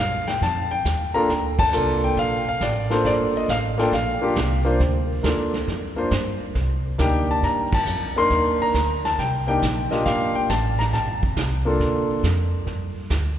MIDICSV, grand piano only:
0, 0, Header, 1, 2, 480
1, 0, Start_track
1, 0, Key_signature, -2, "minor"
1, 0, Tempo, 437637
1, 1418, Time_signature, 4, 2, 24, 8
1, 14684, End_track
2, 0, Start_track
2, 0, Title_t, "Grand piano"
2, 0, Program_c, 0, 0
2, 0, Note_on_c, 0, 77, 87
2, 280, Note_off_c, 0, 77, 0
2, 300, Note_on_c, 0, 79, 78
2, 445, Note_off_c, 0, 79, 0
2, 469, Note_on_c, 0, 81, 93
2, 767, Note_off_c, 0, 81, 0
2, 781, Note_on_c, 0, 79, 91
2, 1229, Note_off_c, 0, 79, 0
2, 1255, Note_on_c, 0, 58, 69
2, 1255, Note_on_c, 0, 82, 97
2, 1262, Note_on_c, 0, 62, 63
2, 1270, Note_on_c, 0, 65, 63
2, 1272, Note_on_c, 0, 69, 73
2, 1399, Note_off_c, 0, 58, 0
2, 1402, Note_off_c, 0, 62, 0
2, 1406, Note_off_c, 0, 65, 0
2, 1407, Note_off_c, 0, 69, 0
2, 1706, Note_off_c, 0, 82, 0
2, 1747, Note_on_c, 0, 81, 113
2, 1892, Note_on_c, 0, 58, 60
2, 1894, Note_on_c, 0, 62, 56
2, 1901, Note_on_c, 0, 65, 55
2, 1903, Note_on_c, 0, 69, 66
2, 2193, Note_off_c, 0, 81, 0
2, 2237, Note_on_c, 0, 79, 85
2, 2375, Note_off_c, 0, 79, 0
2, 2401, Note_on_c, 0, 77, 84
2, 2637, Note_off_c, 0, 58, 0
2, 2639, Note_off_c, 0, 62, 0
2, 2642, Note_off_c, 0, 65, 0
2, 2643, Note_off_c, 0, 69, 0
2, 2711, Note_off_c, 0, 77, 0
2, 2727, Note_on_c, 0, 77, 80
2, 2876, Note_off_c, 0, 77, 0
2, 2878, Note_on_c, 0, 74, 73
2, 3181, Note_on_c, 0, 58, 67
2, 3185, Note_on_c, 0, 62, 60
2, 3190, Note_on_c, 0, 65, 59
2, 3194, Note_on_c, 0, 69, 73
2, 3201, Note_on_c, 0, 72, 75
2, 3205, Note_off_c, 0, 74, 0
2, 3354, Note_off_c, 0, 72, 0
2, 3361, Note_on_c, 0, 74, 81
2, 3432, Note_off_c, 0, 74, 0
2, 3696, Note_on_c, 0, 75, 81
2, 3789, Note_off_c, 0, 58, 0
2, 3791, Note_off_c, 0, 62, 0
2, 3793, Note_off_c, 0, 65, 0
2, 3796, Note_off_c, 0, 69, 0
2, 3827, Note_off_c, 0, 75, 0
2, 3841, Note_on_c, 0, 77, 89
2, 3912, Note_off_c, 0, 77, 0
2, 4142, Note_on_c, 0, 58, 71
2, 4150, Note_on_c, 0, 62, 67
2, 4156, Note_on_c, 0, 65, 65
2, 4162, Note_on_c, 0, 69, 78
2, 4162, Note_on_c, 0, 79, 79
2, 4285, Note_off_c, 0, 58, 0
2, 4289, Note_off_c, 0, 62, 0
2, 4292, Note_off_c, 0, 65, 0
2, 4295, Note_off_c, 0, 69, 0
2, 4300, Note_off_c, 0, 79, 0
2, 4322, Note_on_c, 0, 77, 76
2, 4623, Note_on_c, 0, 58, 74
2, 4628, Note_on_c, 0, 62, 65
2, 4632, Note_on_c, 0, 65, 67
2, 4639, Note_on_c, 0, 67, 78
2, 4766, Note_off_c, 0, 58, 0
2, 4768, Note_off_c, 0, 62, 0
2, 4770, Note_off_c, 0, 65, 0
2, 4774, Note_off_c, 0, 67, 0
2, 5096, Note_on_c, 0, 58, 76
2, 5101, Note_on_c, 0, 62, 66
2, 5109, Note_on_c, 0, 65, 67
2, 5113, Note_on_c, 0, 72, 74
2, 5231, Note_off_c, 0, 77, 0
2, 5243, Note_off_c, 0, 58, 0
2, 5246, Note_off_c, 0, 62, 0
2, 5250, Note_off_c, 0, 65, 0
2, 5252, Note_off_c, 0, 72, 0
2, 5736, Note_on_c, 0, 58, 56
2, 5740, Note_on_c, 0, 62, 51
2, 5750, Note_on_c, 0, 65, 50
2, 5755, Note_on_c, 0, 69, 60
2, 6036, Note_off_c, 0, 58, 0
2, 6037, Note_off_c, 0, 62, 0
2, 6042, Note_off_c, 0, 65, 0
2, 6045, Note_off_c, 0, 69, 0
2, 6540, Note_on_c, 0, 58, 62
2, 6546, Note_on_c, 0, 62, 60
2, 6557, Note_on_c, 0, 65, 59
2, 6562, Note_on_c, 0, 72, 71
2, 6687, Note_off_c, 0, 58, 0
2, 6689, Note_off_c, 0, 62, 0
2, 6695, Note_off_c, 0, 65, 0
2, 6698, Note_off_c, 0, 72, 0
2, 7658, Note_on_c, 0, 62, 57
2, 7659, Note_on_c, 0, 58, 59
2, 7667, Note_on_c, 0, 63, 53
2, 7673, Note_on_c, 0, 67, 68
2, 7690, Note_on_c, 0, 79, 89
2, 7984, Note_off_c, 0, 79, 0
2, 8015, Note_on_c, 0, 81, 84
2, 8162, Note_on_c, 0, 82, 86
2, 8165, Note_off_c, 0, 81, 0
2, 8406, Note_off_c, 0, 58, 0
2, 8406, Note_off_c, 0, 62, 0
2, 8411, Note_off_c, 0, 63, 0
2, 8413, Note_off_c, 0, 67, 0
2, 8460, Note_off_c, 0, 82, 0
2, 8493, Note_on_c, 0, 81, 102
2, 8933, Note_off_c, 0, 81, 0
2, 8954, Note_on_c, 0, 58, 63
2, 8954, Note_on_c, 0, 62, 56
2, 8960, Note_on_c, 0, 63, 55
2, 8970, Note_on_c, 0, 70, 70
2, 8970, Note_on_c, 0, 84, 110
2, 9411, Note_off_c, 0, 84, 0
2, 9453, Note_on_c, 0, 82, 98
2, 9560, Note_off_c, 0, 58, 0
2, 9560, Note_off_c, 0, 62, 0
2, 9563, Note_off_c, 0, 63, 0
2, 9567, Note_off_c, 0, 70, 0
2, 9929, Note_on_c, 0, 81, 90
2, 9940, Note_off_c, 0, 82, 0
2, 10082, Note_off_c, 0, 81, 0
2, 10082, Note_on_c, 0, 79, 86
2, 10380, Note_off_c, 0, 79, 0
2, 10390, Note_on_c, 0, 58, 62
2, 10395, Note_on_c, 0, 62, 57
2, 10398, Note_on_c, 0, 79, 88
2, 10405, Note_on_c, 0, 63, 61
2, 10405, Note_on_c, 0, 67, 71
2, 10533, Note_off_c, 0, 58, 0
2, 10535, Note_off_c, 0, 62, 0
2, 10540, Note_off_c, 0, 63, 0
2, 10540, Note_off_c, 0, 67, 0
2, 10844, Note_off_c, 0, 79, 0
2, 10867, Note_on_c, 0, 58, 59
2, 10870, Note_on_c, 0, 75, 78
2, 10873, Note_on_c, 0, 62, 50
2, 10880, Note_on_c, 0, 65, 56
2, 10888, Note_on_c, 0, 67, 67
2, 11030, Note_on_c, 0, 77, 80
2, 11032, Note_off_c, 0, 75, 0
2, 11332, Note_off_c, 0, 77, 0
2, 11355, Note_on_c, 0, 79, 85
2, 11474, Note_off_c, 0, 58, 0
2, 11477, Note_off_c, 0, 62, 0
2, 11481, Note_off_c, 0, 65, 0
2, 11485, Note_off_c, 0, 67, 0
2, 11499, Note_off_c, 0, 79, 0
2, 11514, Note_on_c, 0, 81, 85
2, 11832, Note_on_c, 0, 82, 80
2, 11846, Note_off_c, 0, 81, 0
2, 11887, Note_off_c, 0, 82, 0
2, 11991, Note_on_c, 0, 81, 79
2, 12780, Note_on_c, 0, 58, 67
2, 12786, Note_on_c, 0, 62, 60
2, 12794, Note_on_c, 0, 65, 64
2, 12799, Note_on_c, 0, 69, 69
2, 12903, Note_off_c, 0, 81, 0
2, 13388, Note_off_c, 0, 58, 0
2, 13390, Note_off_c, 0, 62, 0
2, 13394, Note_off_c, 0, 65, 0
2, 13397, Note_off_c, 0, 69, 0
2, 14684, End_track
0, 0, End_of_file